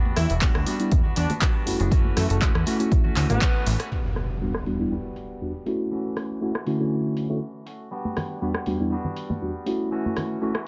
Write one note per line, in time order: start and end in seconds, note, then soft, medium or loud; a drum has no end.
0.00 0.12 E2 medium
0.00 0.30 G3 medium
0.00 0.30 B3 loud
0.00 0.29 D4 medium
0.00 0.28 F#4 medium
0.06 high conga medium
0.17 0.27 E2 loud
0.17 0.33 E4 medium
0.17 cross-stick medium
0.17 open hi-hat medium
0.17 tambourine loud
0.17 low conga medium
0.29 0.49 E1 medium
0.29 0.40 B3 medium
0.29 0.41 D4 medium
0.29 0.41 F#4 medium
0.29 closed hi-hat medium
0.29 tambourine medium
0.41 0.64 G3 medium
0.41 0.51 G3 medium
0.41 0.51 B3 medium
0.41 0.65 B3 medium
0.41 0.51 D4 medium
0.41 0.66 D4 loud
0.41 0.51 F#4 medium
0.41 0.67 F#4 loud
0.41 kick loud
0.41 clap loud
0.41 closed hi-hat medium
0.55 0.64 D2 medium
0.55 cross-stick medium
0.66 1.04 G3 medium
0.66 0.75 G3 medium
0.66 0.76 B3 medium
0.66 1.05 B3 medium
0.66 0.76 D4 medium
0.66 1.04 D4 medium
0.66 0.76 F#4 medium
0.66 1.02 F#4 medium
0.66 open hi-hat loud
0.66 tambourine medium
0.66 high conga medium
0.79 0.93 G3 medium
0.79 0.93 B3 medium
0.79 0.93 D4 medium
0.79 0.93 E4 medium
0.79 closed hi-hat medium
0.79 tambourine medium
0.92 1.02 E2 medium
0.92 kick loud
0.92 closed hi-hat medium
1.04 1.15 E2 soft
1.04 1.15 B3 soft
1.04 1.16 D4 medium
1.04 1.16 F#4 medium
1.04 low conga medium
1.16 1.27 E2 medium
1.16 1.29 G3 medium
1.16 1.30 B3 medium
1.16 1.33 D4 medium
1.16 1.29 D4 medium
1.16 1.28 F#4 medium
1.16 open hi-hat loud
1.16 tambourine medium
1.29 1.40 B3 soft
1.29 1.41 D4 soft
1.29 1.41 F#4 medium
1.29 closed hi-hat medium
1.29 tambourine soft
1.29 high conga medium
1.29 low conga medium
1.41 1.80 G3 medium
1.41 1.50 G3 medium
1.41 1.51 B3 medium
1.41 1.80 B3 medium
1.41 1.51 D4 medium
1.41 1.79 D4 medium
1.41 1.51 F#4 medium
1.41 1.78 F#4 loud
1.41 kick loud
1.41 clap loud
1.41 closed hi-hat medium
1.66 1.77 F#1 soft
1.66 2.38 A3 medium
1.66 2.39 C#4 medium
1.66 2.39 E4 medium
1.66 2.39 F#4 loud
1.66 open hi-hat loud
1.66 tambourine medium
1.79 2.12 F#1 medium
1.79 1.91 B3 medium
1.79 1.92 D4 medium
1.79 1.91 F#4 medium
1.79 closed hi-hat medium
1.79 tambourine medium
1.91 2.30 E3 medium
1.91 2.30 A3 medium
1.91 2.29 C#4 loud
1.91 2.28 F#4 loud
1.91 kick loud
1.91 closed hi-hat medium
2.05 high conga medium
2.17 2.27 F#2 loud
2.17 2.25 A3 medium
2.17 cross-stick medium
2.17 open hi-hat loud
2.17 tambourine loud
2.17 low conga medium
2.29 2.48 F#1 medium
2.29 2.37 A3 medium
2.29 2.41 A3 medium
2.29 2.41 C#4 medium
2.29 2.41 F#4 medium
2.29 closed hi-hat medium
2.29 tambourine medium
2.41 2.50 A3 loud
2.41 2.65 A3 medium
2.41 2.50 C#4 medium
2.41 2.66 C#4 medium
2.41 2.51 E4 medium
2.41 2.51 F#4 loud
2.41 2.67 F#4 medium
2.41 kick loud
2.41 clap loud
2.41 closed hi-hat medium
2.55 2.64 E2 loud
2.55 cross-stick medium
2.66 2.79 E3 medium
2.66 2.76 A3 medium
2.66 2.80 A3 medium
2.66 2.77 C#4 medium
2.66 2.79 C#4 medium
2.66 2.77 E4 medium
2.66 2.77 F#4 medium
2.66 2.78 F#4 medium
2.66 open hi-hat loud
2.66 tambourine medium
2.66 high conga medium
2.79 3.26 A3 medium
2.79 3.05 A3 soft
2.79 3.27 C#4 medium
2.79 3.04 C#4 medium
2.79 3.27 E4 medium
2.79 3.03 F#4 medium
2.79 3.27 F#4 loud
2.79 closed hi-hat medium
2.79 tambourine soft
2.92 kick loud
2.92 closed hi-hat medium
3.04 3.14 D2 soft
3.04 3.15 A3 soft
3.04 3.16 C#4 medium
3.04 3.16 F#4 medium
3.04 low conga medium
3.16 3.27 D2 medium
3.16 3.29 E3 medium
3.16 3.30 A3 medium
3.16 3.29 C#4 medium
3.16 3.28 F#4 medium
3.16 clap medium
3.16 open hi-hat loud
3.16 tambourine medium
3.29 3.39 A1 medium
3.29 3.38 A3 loud
3.29 3.40 A3 soft
3.29 3.67 B3 medium
3.29 3.38 C#4 medium
3.29 3.41 C#4 soft
3.29 3.38 E4 medium
3.29 3.41 F#4 medium
3.29 3.38 F#4 loud
3.29 closed hi-hat medium
3.29 tambourine medium
3.29 high conga medium
3.29 low conga medium
3.41 3.80 E3 medium
3.41 3.80 A3 medium
3.41 3.79 C#4 medium
3.41 3.78 F#4 medium
3.41 kick loud
3.41 clap loud
3.41 closed hi-hat medium
3.66 3.77 A1 loud
3.66 open hi-hat loud
3.66 tambourine loud
3.79 3.91 A3 medium
3.79 3.92 C#4 medium
3.79 3.91 F#4 medium
3.79 cross-stick medium
3.79 closed hi-hat medium
3.79 tambourine medium
3.91 4.40 G3 medium
3.91 4.41 B3 medium
3.91 4.42 D4 medium
3.91 4.43 F#4 medium
3.91 impact medium
4.16 cross-stick medium
4.16 open hi-hat medium
4.41 4.51 E2 medium
4.41 4.51 G3 medium
4.41 4.90 G3 medium
4.41 4.51 B3 medium
4.41 4.91 B3 medium
4.41 4.51 D4 medium
4.41 4.91 D4 medium
4.41 4.51 F#4 medium
4.41 4.93 F#4 medium
4.54 cross-stick medium
4.66 4.75 E2 medium
4.66 4.76 G3 medium
4.66 4.76 B3 medium
4.66 4.76 D4 medium
4.66 4.76 F#4 medium
4.66 open hi-hat loud
4.79 4.93 E2 medium
4.79 4.93 G3 medium
4.79 4.93 B3 medium
4.79 4.93 D4 medium
4.79 4.93 E4 medium
4.91 5.67 G3 medium
4.91 5.67 B3 medium
4.91 5.66 D4 medium
4.91 5.66 F#4 medium
5.16 open hi-hat medium
5.41 5.51 E2 medium
5.41 5.51 G3 medium
5.41 5.51 B3 medium
5.41 5.51 D4 medium
5.41 5.51 F#4 medium
5.66 6.38 A3 medium
5.66 5.91 B3 soft
5.66 6.39 C#4 medium
5.66 5.92 D4 soft
5.66 6.39 E4 medium
5.66 5.92 F#4 soft
5.66 6.39 F#4 medium
5.66 open hi-hat loud
5.91 6.41 E3 medium
5.91 6.41 A3 medium
5.91 6.42 C#4 medium
5.91 6.43 F#4 medium
6.17 cross-stick medium
6.17 open hi-hat loud
6.41 6.67 E3 medium
6.41 6.50 A3 medium
6.41 6.67 A3 medium
6.41 6.51 C#4 medium
6.41 6.66 C#4 medium
6.41 6.51 E4 medium
6.41 6.51 F#4 loud
6.41 6.64 F#4 medium
6.55 cross-stick medium
6.66 6.76 D3 medium
6.66 7.69 E3 medium
6.66 6.77 A3 medium
6.66 7.67 A3 medium
6.66 6.77 C#4 medium
6.66 7.66 C#4 medium
6.66 6.77 E4 medium
6.66 7.65 F#4 medium
6.66 6.77 F#4 medium
6.66 open hi-hat loud
6.79 7.26 D3 medium
6.79 7.27 A3 medium
6.79 7.27 C#4 medium
6.79 7.27 E4 medium
6.79 7.27 F#4 medium
7.17 open hi-hat loud
7.29 7.38 D3 medium
7.29 7.38 A3 medium
7.29 7.38 C#4 medium
7.29 7.38 E4 medium
7.29 7.38 F#4 medium
7.66 7.91 A3 soft
7.66 7.92 C#4 soft
7.66 7.91 F#4 medium
7.66 open hi-hat loud
7.91 8.40 G3 medium
7.91 8.41 B3 medium
7.91 8.41 D4 medium
7.91 8.43 F#4 medium
7.91 tambourine soft
8.05 tambourine soft
8.05 high conga medium
8.17 cross-stick medium
8.17 open hi-hat loud
8.17 tambourine medium
8.17 low conga medium
8.31 tambourine soft
8.41 8.51 E2 medium
8.41 8.89 G3 medium
8.41 8.51 G3 medium
8.41 8.51 B3 medium
8.41 8.91 B3 medium
8.41 8.51 D4 medium
8.41 8.92 D4 medium
8.41 8.51 F#4 medium
8.41 8.94 F#4 medium
8.41 tambourine soft
8.54 cross-stick medium
8.66 8.76 E2 medium
8.66 8.76 G3 medium
8.66 8.76 B3 medium
8.66 8.76 D4 medium
8.66 8.76 F#4 medium
8.66 open hi-hat loud
8.66 tambourine medium
8.66 high conga medium
8.79 8.93 E2 medium
8.79 8.93 G3 medium
8.79 8.93 B3 medium
8.79 8.93 D4 medium
8.79 8.93 E4 medium
8.79 tambourine soft
8.91 9.91 G3 medium
8.91 9.91 B3 medium
8.91 9.92 D4 medium
8.91 9.92 F#4 medium
8.91 tambourine soft
9.04 low conga medium
9.16 open hi-hat loud
9.16 tambourine medium
9.29 tambourine soft
9.29 high conga medium
9.29 low conga medium
9.41 9.51 E2 medium
9.41 9.51 G3 medium
9.41 9.51 B3 medium
9.41 9.51 D4 medium
9.41 9.51 F#4 medium
9.41 tambourine soft
9.66 10.39 A3 medium
9.66 10.39 C#4 medium
9.66 10.39 E4 medium
9.66 10.39 F#4 medium
9.66 open hi-hat loud
9.66 tambourine medium
9.81 tambourine soft
9.91 10.41 E3 medium
9.91 10.41 A3 medium
9.91 10.41 C#4 medium
9.91 10.43 F#4 medium
9.91 tambourine soft
10.06 tambourine soft
10.06 high conga loud
10.17 cross-stick medium
10.17 open hi-hat loud
10.17 tambourine medium
10.17 low conga medium
10.30 tambourine soft
10.41 10.66 E3 medium
10.41 10.51 A3 medium
10.41 10.67 A3 medium
10.41 10.51 C#4 medium
10.41 10.66 C#4 medium
10.41 10.51 E4 medium
10.41 10.51 F#4 loud
10.41 10.64 F#4 medium
10.41 tambourine soft
10.55 cross-stick medium